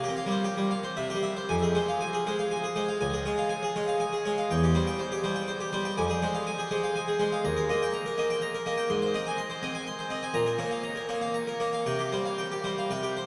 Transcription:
0.04 G4
0.09 C4
0.17 F5
0.26 G3
0.31 C5
0.44 G4
0.57 G3
0.71 F5
0.83 C5
0.97 C3 E5
1.10 G4
1.15 G3
1.23 E5
1.37 C5
1.49 F2 G#5
1.63 G#4
1.75 G#3 C5
1.88 F5
2.01 G#5
2.13 G#4
2.27 G#3 C5
2.39 F5
2.51 G#5
2.64 G#4
2.76 G#3 C5
2.88 F5
3.01 C#2 G#5
3.13 G#4
3.26 G#3 C#5
3.38 F5
3.49 G#5
3.63 G#4
3.76 G#3 C#5
3.88 F5
4.00 G#5
4.13 G#4
4.25 G#3 C#5
4.38 F5
4.51 E2 G5
4.63 G4
4.75 G3 C5
4.87 G5
4.99 C5
5.12 G4
5.24 G3 C5
5.36 G5
5.48 C5
5.60 G4
5.73 G3 C5
5.85 G5
5.98 F2 G#5
6.10 G#4
6.22 G#3 C5
6.35 F5
6.47 G#5
6.59 G#4
6.71 G#3 C5
6.83 F5
6.96 G#5
7.08 G#4
7.20 G#3 C5
7.32 F5
7.45 D#2 A#5
7.57 A#4
7.69 A#3 D#5
7.82 G5
7.94 A#5
8.06 A#4
8.18 A#3 D#5
8.30 G5
8.42 A#5
8.54 A#4
8.66 A#3 D#5
8.78 G5
8.90 G#2 C6
9.02 C5
9.14 C4 D#5
9.27 G#5
9.38 C6
9.50 C5
9.63 C4 D#5
9.75 G#5
9.87 C6
9.99 C5
10.10 C4 D#5
10.23 G#5
10.34 A#2 A#5
10.46 A#4
10.59 A#3 C#5
10.71 F5
10.83 A#5
10.96 A#4
11.09 A#3 C#5
11.21 F5
11.34 A#5
11.47 A#4
11.60 A#3 C#5
11.73 F5
11.86 C3 G5
11.99 G4
12.12 G3 C5
12.25 F5
12.38 G5
12.52 G4
12.64 G3 C5
12.78 F5
12.91 C3 G5
13.03 G4
13.17 C5

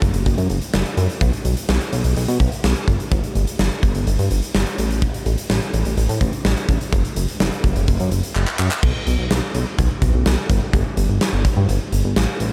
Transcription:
0.02 F#1, kick, closed hi-hat
0.14 F#1, closed hi-hat
0.26 F#1, kick, closed hi-hat
0.38 F#2, closed hi-hat
0.50 F#1, closed hi-hat
0.61 closed hi-hat
0.73 F#1, snare
0.86 closed hi-hat
0.97 F#2, closed hi-hat
1.10 closed hi-hat
1.21 B1, kick, closed hi-hat
1.33 closed hi-hat
1.45 B1, closed hi-hat
1.57 closed hi-hat
1.69 B1, snare
1.81 closed hi-hat
1.93 B1, closed hi-hat
2.04 B1, closed hi-hat
2.16 B1, closed hi-hat
2.28 B2, closed hi-hat
2.40 B1, kick, closed hi-hat
2.52 closed hi-hat
2.64 B1, snare
2.76 closed hi-hat
2.88 G1, kick, closed hi-hat
3.00 closed hi-hat
3.12 G1, kick, closed hi-hat
3.24 closed hi-hat
3.35 G1, closed hi-hat
3.47 closed hi-hat
3.59 G1, snare
3.71 closed hi-hat
3.83 G1, kick, closed hi-hat
3.95 G1, closed hi-hat
4.07 G1, closed hi-hat
4.19 G2, closed hi-hat
4.31 G1, closed hi-hat
4.42 closed hi-hat
4.55 G1, snare
4.66 closed hi-hat
4.78 A1, closed hi-hat
4.91 closed hi-hat
5.02 kick, closed hi-hat
5.14 closed hi-hat
5.26 A1, closed hi-hat
5.38 closed hi-hat
5.50 A1, snare
5.62 closed hi-hat
5.74 A1, closed hi-hat
5.85 A1, closed hi-hat
5.97 A1, closed hi-hat
6.09 A2, closed hi-hat
6.21 A1, kick, closed hi-hat
6.33 closed hi-hat
6.45 A1, snare
6.57 closed hi-hat
6.69 A1, kick, closed hi-hat
6.81 closed hi-hat
6.93 F#1, kick, closed hi-hat
7.05 closed hi-hat
7.16 F#1, closed hi-hat
7.28 closed hi-hat
7.40 F#1, snare
7.52 closed hi-hat
7.64 F#1, kick, closed hi-hat
7.76 F#1, closed hi-hat
7.88 F#1, kick, closed hi-hat
8.00 F#2, closed hi-hat
8.12 F#1, closed hi-hat
8.23 closed hi-hat
8.35 F#1, clap
8.47 clap
8.59 F#2, clap
8.71 clap
8.83 B1, kick, crash
9.07 B1, closed hi-hat
9.19 B1
9.31 B1, snare, closed hi-hat
9.54 B1, closed hi-hat
9.78 B1, kick, closed hi-hat
10.02 B1, kick, closed hi-hat
10.14 B1
10.26 B1, snare, closed hi-hat
10.50 G1, kick, closed hi-hat
10.73 G1, kick, closed hi-hat
10.97 G1, closed hi-hat
11.09 G1
11.21 snare, closed hi-hat
11.33 G1
11.45 kick, closed hi-hat
11.57 G2
11.69 G1, closed hi-hat
11.92 G1, closed hi-hat
12.05 G1
12.16 A1, snare, closed hi-hat
12.40 A1, closed hi-hat

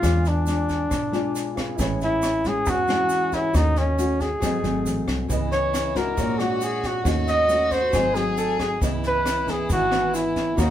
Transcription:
Already playing: F4
0.00 E2 E3 G#3 D4 F4 G#4 B4, kick, cross-stick, snare, shaker
0.04 D5
0.25 D4, snare, shaker
0.46 G#3 D4 F4, snare, shaker
0.69 kick, snare, shaker
0.90 B1 B2, kick, cross-stick, snare, shaker
1.12 G#3 D4 F4, snare, shaker
1.35 snare, shaker
1.55 F4 G#4 B4 F5, kick, cross-stick, snare, shaker
1.75 A1 A2 G#3 C#4 E4 G#4 B4, kick, snare, shaker
1.80 E4 C#5
2.01 E4, snare, shaker
2.22 cross-stick, snare, shaker
2.44 G#3 C#4 E4 G#4, kick, snare, shaker
2.66 E2 E3 F#4, kick, snare, shaker
2.88 G#3 C#4 E4, cross-stick, snare, shaker
3.09 snare, shaker
3.31 E4 G#4 B4 C#5, kick, snare, shaker
3.51 D#2 D#3 A3 C#4 F#4 A4, kick, cross-stick, snare, shaker
3.56 D#4 C#5 D#5
3.76 C#4, snare, shaker
3.98 A3 C#4 F#4, snare, shaker
4.20 G#4, kick, snare, shaker
4.39 G#1 G#2 F#3 A3 C4 F#4 C5, kick, cross-stick, snare, shaker
4.45 D#5
4.62 G#1 F#3 A3 C4, snare, shaker
4.86 A1, snare, shaker
5.08 C2, kick, cross-stick, snare, shaker
5.28 C#2 C#3 E3 B3 E4 G#4 B4 D#5, kick, snare, shaker
5.52 C#5, snare, shaker
5.74 cross-stick, snare, shaker
5.95 G#3 D4 F#4 A#4, kick, snare, shaker
6.15 A#1 A#2 F#4 G#4 C#5, kick, snare, shaker
6.21 D5
6.39 G#3 D4 F#4, cross-stick, snare, shaker
6.61 G#4, snare, shaker
6.83 F#4, kick, snare, shaker
7.01 D#2 D#3 A3 C#4 F#4 A4, kick, cross-stick, snare
7.06 F#4 C#5 D#5, shaker
7.27 D#5, snare, shaker
7.49 A3 C#4 F#4, snare, shaker
7.71 C5, kick, snare, shaker
7.89 G#1 G#2 A3 F#4 G#4 C5, kick, cross-stick, snare, shaker
7.94 F#3 A3 C4 D#5
8.14 F#3 A3 C4 G#4, snare, shaker
8.37 A4, snare, shaker
8.60 G#4, kick, cross-stick, snare, shaker
8.80 C#2 C#3 E3 B3 E4 G#4 B4 D#5, kick, snare, shaker
9.04 B4, snare, shaker
9.25 cross-stick, snare, shaker
9.46 E3 B3 G#4, kick, snare, shaker
9.69 G#1 G#2 F#4, kick, snare, shaker
9.91 E3 B3, cross-stick, snare, shaker
10.14 E4, snare, shaker
10.36 kick, snare, shaker
10.55 D#2 D#3 A#3 C#4 F#4 A#4 C#5, kick, cross-stick, snare, shaker
10.59 D#4 F5

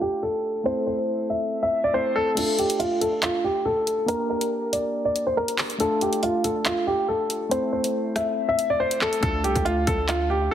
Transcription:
Already playing: A3 D4 F4 A4
0.01 G4
0.23 A4
0.44 closed hi-hat
0.64 A3 C4 E4 C5, closed hi-hat
0.68 A4
0.87 C5
0.98 closed hi-hat
1.30 E5, closed hi-hat
1.63 E5
1.84 D5
1.93 A3 C4 E4 A4 C5
2.16 A4
2.35 A3 D4 F4 A4, closed hi-hat, crash
2.39 A4
2.59 G4, closed hi-hat
2.70 closed hi-hat
2.79 F4, closed hi-hat
3.01 A4, closed hi-hat
3.23 F4, clap, closed hi-hat
3.44 G4
3.65 A4
3.87 closed hi-hat
4.06 A#3 D4 G4 A#4, closed hi-hat
4.10 A#4
4.30 A#4
4.41 closed hi-hat
4.73 D5, closed hi-hat
5.05 D5
5.16 closed hi-hat
5.27 C5
5.37 A#4
5.48 closed hi-hat
5.58 clap, open hi-hat
5.70 closed hi-hat
5.78 A3 D4 F4 A4, closed hi-hat
5.83 A4
6.01 G4, closed hi-hat
6.13 closed hi-hat
6.23 F4, closed hi-hat
6.44 A4, closed hi-hat
6.66 F4, clap, closed hi-hat
6.87 G4
7.08 A4
7.30 closed hi-hat
7.49 A3 C4 E4 C5, closed hi-hat
7.54 A4
7.73 C5
7.84 closed hi-hat
8.16 E5, cross-stick, closed hi-hat
8.49 E5
8.59 closed hi-hat
8.70 D5
8.80 C5
8.91 closed hi-hat
9.01 A4, cross-stick, clap
9.13 closed hi-hat
9.20 D2 A3 D4 F4 A4, kick, closed hi-hat
9.25 A4
9.44 C2 G4, closed hi-hat
9.56 D2, kick, closed hi-hat
9.65 F4, closed hi-hat
9.87 D2 A4, kick, closed hi-hat
10.09 F4, clap, closed hi-hat
10.30 G4

